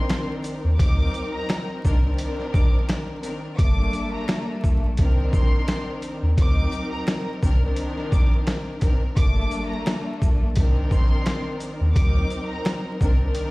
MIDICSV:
0, 0, Header, 1, 5, 480
1, 0, Start_track
1, 0, Tempo, 697674
1, 546, Time_signature, 4, 2, 24, 8
1, 9294, End_track
2, 0, Start_track
2, 0, Title_t, "Violin section"
2, 0, Program_c, 0, 48
2, 0, Note_on_c, 0, 84, 88
2, 180, Note_off_c, 0, 84, 0
2, 537, Note_on_c, 0, 86, 102
2, 892, Note_off_c, 0, 86, 0
2, 917, Note_on_c, 0, 82, 83
2, 1134, Note_off_c, 0, 82, 0
2, 1748, Note_on_c, 0, 86, 79
2, 1867, Note_off_c, 0, 86, 0
2, 2469, Note_on_c, 0, 86, 107
2, 2818, Note_off_c, 0, 86, 0
2, 2853, Note_on_c, 0, 82, 80
2, 3063, Note_off_c, 0, 82, 0
2, 3672, Note_on_c, 0, 84, 93
2, 4020, Note_off_c, 0, 84, 0
2, 4398, Note_on_c, 0, 86, 114
2, 4743, Note_off_c, 0, 86, 0
2, 4756, Note_on_c, 0, 82, 81
2, 4974, Note_off_c, 0, 82, 0
2, 5585, Note_on_c, 0, 86, 73
2, 5705, Note_off_c, 0, 86, 0
2, 6308, Note_on_c, 0, 86, 111
2, 6658, Note_off_c, 0, 86, 0
2, 6673, Note_on_c, 0, 82, 76
2, 6892, Note_off_c, 0, 82, 0
2, 7512, Note_on_c, 0, 84, 91
2, 7860, Note_off_c, 0, 84, 0
2, 8217, Note_on_c, 0, 86, 98
2, 8572, Note_off_c, 0, 86, 0
2, 8595, Note_on_c, 0, 82, 82
2, 8813, Note_off_c, 0, 82, 0
2, 9294, End_track
3, 0, Start_track
3, 0, Title_t, "String section"
3, 0, Program_c, 1, 48
3, 0, Note_on_c, 1, 51, 111
3, 0, Note_on_c, 1, 60, 102
3, 0, Note_on_c, 1, 62, 91
3, 0, Note_on_c, 1, 70, 106
3, 481, Note_off_c, 1, 51, 0
3, 483, Note_off_c, 1, 60, 0
3, 485, Note_off_c, 1, 62, 0
3, 488, Note_off_c, 1, 70, 0
3, 537, Note_on_c, 1, 54, 102
3, 542, Note_on_c, 1, 60, 91
3, 546, Note_on_c, 1, 63, 98
3, 551, Note_on_c, 1, 70, 109
3, 1259, Note_off_c, 1, 60, 0
3, 1262, Note_off_c, 1, 54, 0
3, 1263, Note_on_c, 1, 51, 94
3, 1266, Note_off_c, 1, 63, 0
3, 1268, Note_on_c, 1, 60, 91
3, 1269, Note_off_c, 1, 70, 0
3, 1272, Note_on_c, 1, 62, 87
3, 1277, Note_on_c, 1, 70, 111
3, 1395, Note_off_c, 1, 51, 0
3, 1399, Note_off_c, 1, 60, 0
3, 1403, Note_on_c, 1, 51, 106
3, 1404, Note_off_c, 1, 62, 0
3, 1408, Note_on_c, 1, 60, 91
3, 1409, Note_off_c, 1, 70, 0
3, 1412, Note_on_c, 1, 62, 94
3, 1417, Note_on_c, 1, 70, 111
3, 2168, Note_off_c, 1, 51, 0
3, 2171, Note_off_c, 1, 60, 0
3, 2173, Note_off_c, 1, 62, 0
3, 2175, Note_off_c, 1, 70, 0
3, 2214, Note_on_c, 1, 51, 79
3, 2218, Note_on_c, 1, 60, 72
3, 2222, Note_on_c, 1, 62, 70
3, 2227, Note_on_c, 1, 70, 91
3, 2443, Note_off_c, 1, 51, 0
3, 2445, Note_off_c, 1, 60, 0
3, 2447, Note_off_c, 1, 62, 0
3, 2450, Note_off_c, 1, 70, 0
3, 2466, Note_on_c, 1, 55, 110
3, 2471, Note_on_c, 1, 58, 93
3, 2475, Note_on_c, 1, 62, 92
3, 2480, Note_on_c, 1, 57, 120
3, 3358, Note_off_c, 1, 55, 0
3, 3360, Note_off_c, 1, 58, 0
3, 3362, Note_off_c, 1, 62, 0
3, 3365, Note_off_c, 1, 57, 0
3, 3432, Note_on_c, 1, 51, 111
3, 3437, Note_on_c, 1, 60, 100
3, 3441, Note_on_c, 1, 62, 95
3, 3445, Note_on_c, 1, 70, 109
3, 4320, Note_off_c, 1, 51, 0
3, 4323, Note_off_c, 1, 60, 0
3, 4325, Note_off_c, 1, 62, 0
3, 4327, Note_off_c, 1, 70, 0
3, 4377, Note_on_c, 1, 54, 101
3, 4382, Note_on_c, 1, 60, 95
3, 4386, Note_on_c, 1, 63, 98
3, 4391, Note_on_c, 1, 70, 110
3, 5100, Note_off_c, 1, 60, 0
3, 5101, Note_off_c, 1, 54, 0
3, 5103, Note_on_c, 1, 51, 93
3, 5106, Note_off_c, 1, 63, 0
3, 5108, Note_off_c, 1, 70, 0
3, 5108, Note_on_c, 1, 60, 90
3, 5112, Note_on_c, 1, 62, 87
3, 5117, Note_on_c, 1, 70, 113
3, 5234, Note_off_c, 1, 51, 0
3, 5238, Note_off_c, 1, 60, 0
3, 5242, Note_on_c, 1, 51, 110
3, 5243, Note_off_c, 1, 62, 0
3, 5247, Note_off_c, 1, 70, 0
3, 5247, Note_on_c, 1, 60, 92
3, 5251, Note_on_c, 1, 62, 100
3, 5256, Note_on_c, 1, 70, 106
3, 6008, Note_off_c, 1, 51, 0
3, 6010, Note_off_c, 1, 60, 0
3, 6012, Note_off_c, 1, 62, 0
3, 6014, Note_off_c, 1, 70, 0
3, 6053, Note_on_c, 1, 51, 82
3, 6058, Note_on_c, 1, 60, 72
3, 6063, Note_on_c, 1, 62, 68
3, 6067, Note_on_c, 1, 70, 96
3, 6283, Note_off_c, 1, 51, 0
3, 6285, Note_off_c, 1, 60, 0
3, 6288, Note_off_c, 1, 62, 0
3, 6290, Note_off_c, 1, 70, 0
3, 6306, Note_on_c, 1, 55, 108
3, 6311, Note_on_c, 1, 58, 91
3, 6316, Note_on_c, 1, 62, 92
3, 6320, Note_on_c, 1, 57, 119
3, 7198, Note_off_c, 1, 55, 0
3, 7200, Note_off_c, 1, 58, 0
3, 7202, Note_off_c, 1, 62, 0
3, 7205, Note_off_c, 1, 57, 0
3, 7272, Note_on_c, 1, 51, 109
3, 7277, Note_on_c, 1, 60, 100
3, 7281, Note_on_c, 1, 62, 91
3, 7285, Note_on_c, 1, 70, 107
3, 8161, Note_off_c, 1, 51, 0
3, 8163, Note_off_c, 1, 60, 0
3, 8165, Note_off_c, 1, 62, 0
3, 8167, Note_off_c, 1, 70, 0
3, 8216, Note_on_c, 1, 54, 107
3, 8221, Note_on_c, 1, 60, 94
3, 8225, Note_on_c, 1, 63, 94
3, 8230, Note_on_c, 1, 70, 111
3, 8940, Note_off_c, 1, 60, 0
3, 8941, Note_off_c, 1, 54, 0
3, 8944, Note_on_c, 1, 51, 90
3, 8946, Note_off_c, 1, 63, 0
3, 8948, Note_off_c, 1, 70, 0
3, 8948, Note_on_c, 1, 60, 91
3, 8953, Note_on_c, 1, 62, 84
3, 8958, Note_on_c, 1, 70, 109
3, 9075, Note_off_c, 1, 51, 0
3, 9080, Note_off_c, 1, 60, 0
3, 9083, Note_on_c, 1, 51, 108
3, 9084, Note_off_c, 1, 62, 0
3, 9088, Note_off_c, 1, 70, 0
3, 9088, Note_on_c, 1, 60, 98
3, 9092, Note_on_c, 1, 62, 96
3, 9096, Note_on_c, 1, 70, 115
3, 9294, Note_off_c, 1, 51, 0
3, 9294, Note_off_c, 1, 60, 0
3, 9294, Note_off_c, 1, 62, 0
3, 9294, Note_off_c, 1, 70, 0
3, 9294, End_track
4, 0, Start_track
4, 0, Title_t, "Sub bass"
4, 0, Program_c, 2, 38
4, 442, Note_on_c, 2, 39, 92
4, 531, Note_off_c, 2, 39, 0
4, 548, Note_on_c, 2, 38, 102
4, 748, Note_off_c, 2, 38, 0
4, 1272, Note_on_c, 2, 36, 104
4, 1471, Note_off_c, 2, 36, 0
4, 1749, Note_on_c, 2, 34, 88
4, 1949, Note_off_c, 2, 34, 0
4, 2469, Note_on_c, 2, 31, 106
4, 2669, Note_off_c, 2, 31, 0
4, 3323, Note_on_c, 2, 34, 85
4, 3411, Note_off_c, 2, 34, 0
4, 3432, Note_on_c, 2, 36, 108
4, 3630, Note_off_c, 2, 36, 0
4, 3669, Note_on_c, 2, 34, 97
4, 3869, Note_off_c, 2, 34, 0
4, 4283, Note_on_c, 2, 39, 91
4, 4371, Note_off_c, 2, 39, 0
4, 4389, Note_on_c, 2, 38, 101
4, 4588, Note_off_c, 2, 38, 0
4, 5112, Note_on_c, 2, 36, 97
4, 5310, Note_off_c, 2, 36, 0
4, 5588, Note_on_c, 2, 34, 91
4, 5788, Note_off_c, 2, 34, 0
4, 6308, Note_on_c, 2, 31, 104
4, 6508, Note_off_c, 2, 31, 0
4, 7162, Note_on_c, 2, 34, 82
4, 7250, Note_off_c, 2, 34, 0
4, 7271, Note_on_c, 2, 36, 105
4, 7470, Note_off_c, 2, 36, 0
4, 7508, Note_on_c, 2, 34, 93
4, 7708, Note_off_c, 2, 34, 0
4, 8123, Note_on_c, 2, 39, 91
4, 8211, Note_off_c, 2, 39, 0
4, 8228, Note_on_c, 2, 38, 103
4, 8428, Note_off_c, 2, 38, 0
4, 8951, Note_on_c, 2, 36, 100
4, 9150, Note_off_c, 2, 36, 0
4, 9294, End_track
5, 0, Start_track
5, 0, Title_t, "Drums"
5, 65, Note_on_c, 9, 42, 74
5, 66, Note_on_c, 9, 26, 76
5, 69, Note_on_c, 9, 40, 99
5, 73, Note_on_c, 9, 38, 122
5, 134, Note_off_c, 9, 26, 0
5, 134, Note_off_c, 9, 42, 0
5, 138, Note_off_c, 9, 40, 0
5, 142, Note_off_c, 9, 38, 0
5, 303, Note_on_c, 9, 42, 58
5, 303, Note_on_c, 9, 82, 57
5, 372, Note_off_c, 9, 42, 0
5, 372, Note_off_c, 9, 82, 0
5, 546, Note_on_c, 9, 36, 122
5, 549, Note_on_c, 9, 42, 92
5, 615, Note_off_c, 9, 36, 0
5, 617, Note_off_c, 9, 42, 0
5, 785, Note_on_c, 9, 42, 47
5, 785, Note_on_c, 9, 82, 46
5, 854, Note_off_c, 9, 42, 0
5, 854, Note_off_c, 9, 82, 0
5, 1025, Note_on_c, 9, 26, 76
5, 1030, Note_on_c, 9, 40, 102
5, 1033, Note_on_c, 9, 38, 126
5, 1035, Note_on_c, 9, 42, 71
5, 1094, Note_off_c, 9, 26, 0
5, 1098, Note_off_c, 9, 40, 0
5, 1102, Note_off_c, 9, 38, 0
5, 1103, Note_off_c, 9, 42, 0
5, 1270, Note_on_c, 9, 36, 100
5, 1272, Note_on_c, 9, 82, 61
5, 1339, Note_off_c, 9, 36, 0
5, 1341, Note_off_c, 9, 82, 0
5, 1503, Note_on_c, 9, 42, 95
5, 1572, Note_off_c, 9, 42, 0
5, 1647, Note_on_c, 9, 38, 39
5, 1715, Note_off_c, 9, 38, 0
5, 1747, Note_on_c, 9, 36, 98
5, 1750, Note_on_c, 9, 82, 49
5, 1816, Note_off_c, 9, 36, 0
5, 1819, Note_off_c, 9, 82, 0
5, 1986, Note_on_c, 9, 26, 76
5, 1987, Note_on_c, 9, 42, 76
5, 1991, Note_on_c, 9, 40, 97
5, 1995, Note_on_c, 9, 38, 123
5, 2055, Note_off_c, 9, 26, 0
5, 2056, Note_off_c, 9, 42, 0
5, 2060, Note_off_c, 9, 40, 0
5, 2063, Note_off_c, 9, 38, 0
5, 2224, Note_on_c, 9, 42, 58
5, 2224, Note_on_c, 9, 82, 56
5, 2293, Note_off_c, 9, 42, 0
5, 2293, Note_off_c, 9, 82, 0
5, 2467, Note_on_c, 9, 36, 124
5, 2469, Note_on_c, 9, 42, 96
5, 2536, Note_off_c, 9, 36, 0
5, 2538, Note_off_c, 9, 42, 0
5, 2706, Note_on_c, 9, 42, 45
5, 2706, Note_on_c, 9, 82, 47
5, 2774, Note_off_c, 9, 42, 0
5, 2774, Note_off_c, 9, 82, 0
5, 2944, Note_on_c, 9, 26, 74
5, 2950, Note_on_c, 9, 40, 100
5, 2954, Note_on_c, 9, 38, 125
5, 2955, Note_on_c, 9, 42, 74
5, 3013, Note_off_c, 9, 26, 0
5, 3018, Note_off_c, 9, 40, 0
5, 3022, Note_off_c, 9, 38, 0
5, 3024, Note_off_c, 9, 42, 0
5, 3190, Note_on_c, 9, 36, 98
5, 3192, Note_on_c, 9, 82, 62
5, 3259, Note_off_c, 9, 36, 0
5, 3261, Note_off_c, 9, 82, 0
5, 3422, Note_on_c, 9, 42, 91
5, 3430, Note_on_c, 9, 36, 90
5, 3491, Note_off_c, 9, 42, 0
5, 3499, Note_off_c, 9, 36, 0
5, 3667, Note_on_c, 9, 36, 99
5, 3669, Note_on_c, 9, 82, 49
5, 3736, Note_off_c, 9, 36, 0
5, 3738, Note_off_c, 9, 82, 0
5, 3906, Note_on_c, 9, 42, 76
5, 3907, Note_on_c, 9, 26, 78
5, 3910, Note_on_c, 9, 40, 97
5, 3914, Note_on_c, 9, 38, 121
5, 3975, Note_off_c, 9, 42, 0
5, 3976, Note_off_c, 9, 26, 0
5, 3979, Note_off_c, 9, 40, 0
5, 3983, Note_off_c, 9, 38, 0
5, 4144, Note_on_c, 9, 42, 57
5, 4144, Note_on_c, 9, 82, 57
5, 4212, Note_off_c, 9, 42, 0
5, 4212, Note_off_c, 9, 82, 0
5, 4387, Note_on_c, 9, 36, 123
5, 4389, Note_on_c, 9, 42, 97
5, 4455, Note_off_c, 9, 36, 0
5, 4457, Note_off_c, 9, 42, 0
5, 4624, Note_on_c, 9, 42, 48
5, 4624, Note_on_c, 9, 82, 47
5, 4693, Note_off_c, 9, 42, 0
5, 4693, Note_off_c, 9, 82, 0
5, 4863, Note_on_c, 9, 26, 75
5, 4869, Note_on_c, 9, 40, 100
5, 4873, Note_on_c, 9, 38, 126
5, 4874, Note_on_c, 9, 42, 76
5, 4932, Note_off_c, 9, 26, 0
5, 4938, Note_off_c, 9, 40, 0
5, 4942, Note_off_c, 9, 38, 0
5, 4943, Note_off_c, 9, 42, 0
5, 5110, Note_on_c, 9, 36, 98
5, 5111, Note_on_c, 9, 82, 59
5, 5179, Note_off_c, 9, 36, 0
5, 5180, Note_off_c, 9, 82, 0
5, 5342, Note_on_c, 9, 42, 94
5, 5410, Note_off_c, 9, 42, 0
5, 5486, Note_on_c, 9, 38, 39
5, 5555, Note_off_c, 9, 38, 0
5, 5587, Note_on_c, 9, 36, 96
5, 5589, Note_on_c, 9, 82, 49
5, 5656, Note_off_c, 9, 36, 0
5, 5658, Note_off_c, 9, 82, 0
5, 5826, Note_on_c, 9, 26, 76
5, 5826, Note_on_c, 9, 42, 74
5, 5830, Note_on_c, 9, 40, 97
5, 5834, Note_on_c, 9, 38, 126
5, 5894, Note_off_c, 9, 26, 0
5, 5895, Note_off_c, 9, 42, 0
5, 5898, Note_off_c, 9, 40, 0
5, 5902, Note_off_c, 9, 38, 0
5, 6063, Note_on_c, 9, 42, 56
5, 6063, Note_on_c, 9, 82, 55
5, 6068, Note_on_c, 9, 36, 94
5, 6132, Note_off_c, 9, 42, 0
5, 6132, Note_off_c, 9, 82, 0
5, 6136, Note_off_c, 9, 36, 0
5, 6306, Note_on_c, 9, 36, 124
5, 6309, Note_on_c, 9, 42, 93
5, 6375, Note_off_c, 9, 36, 0
5, 6377, Note_off_c, 9, 42, 0
5, 6545, Note_on_c, 9, 42, 46
5, 6545, Note_on_c, 9, 82, 49
5, 6613, Note_off_c, 9, 42, 0
5, 6613, Note_off_c, 9, 82, 0
5, 6784, Note_on_c, 9, 26, 75
5, 6789, Note_on_c, 9, 40, 98
5, 6793, Note_on_c, 9, 38, 124
5, 6794, Note_on_c, 9, 42, 73
5, 6853, Note_off_c, 9, 26, 0
5, 6858, Note_off_c, 9, 40, 0
5, 6862, Note_off_c, 9, 38, 0
5, 6863, Note_off_c, 9, 42, 0
5, 7030, Note_on_c, 9, 36, 100
5, 7032, Note_on_c, 9, 82, 60
5, 7099, Note_off_c, 9, 36, 0
5, 7100, Note_off_c, 9, 82, 0
5, 7262, Note_on_c, 9, 42, 97
5, 7270, Note_on_c, 9, 36, 93
5, 7331, Note_off_c, 9, 42, 0
5, 7338, Note_off_c, 9, 36, 0
5, 7507, Note_on_c, 9, 36, 96
5, 7510, Note_on_c, 9, 82, 48
5, 7576, Note_off_c, 9, 36, 0
5, 7579, Note_off_c, 9, 82, 0
5, 7745, Note_on_c, 9, 26, 77
5, 7746, Note_on_c, 9, 42, 75
5, 7750, Note_on_c, 9, 40, 98
5, 7754, Note_on_c, 9, 38, 121
5, 7814, Note_off_c, 9, 26, 0
5, 7815, Note_off_c, 9, 42, 0
5, 7819, Note_off_c, 9, 40, 0
5, 7822, Note_off_c, 9, 38, 0
5, 7983, Note_on_c, 9, 42, 57
5, 7983, Note_on_c, 9, 82, 56
5, 8052, Note_off_c, 9, 42, 0
5, 8052, Note_off_c, 9, 82, 0
5, 8226, Note_on_c, 9, 36, 126
5, 8229, Note_on_c, 9, 42, 96
5, 8295, Note_off_c, 9, 36, 0
5, 8298, Note_off_c, 9, 42, 0
5, 8465, Note_on_c, 9, 42, 47
5, 8465, Note_on_c, 9, 82, 47
5, 8534, Note_off_c, 9, 42, 0
5, 8534, Note_off_c, 9, 82, 0
5, 8704, Note_on_c, 9, 26, 77
5, 8709, Note_on_c, 9, 40, 101
5, 8713, Note_on_c, 9, 38, 127
5, 8714, Note_on_c, 9, 42, 74
5, 8773, Note_off_c, 9, 26, 0
5, 8778, Note_off_c, 9, 40, 0
5, 8782, Note_off_c, 9, 38, 0
5, 8783, Note_off_c, 9, 42, 0
5, 8950, Note_on_c, 9, 36, 98
5, 8951, Note_on_c, 9, 82, 63
5, 9018, Note_off_c, 9, 36, 0
5, 9020, Note_off_c, 9, 82, 0
5, 9182, Note_on_c, 9, 42, 94
5, 9251, Note_off_c, 9, 42, 0
5, 9294, End_track
0, 0, End_of_file